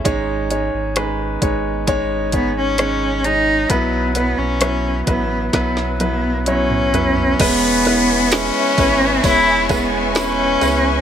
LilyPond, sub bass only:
\new Staff \with { instrumentName = "Sub bass" } { \clef bass \time 4/4 \key e \major \tempo 4 = 66 gis,,8. gis,,8. gis,,2~ gis,,8 | b,,8. b,,8. a,,8 b,,2 | e,,4~ e,,16 r16 gis,,8 e,,4. cis,8 | }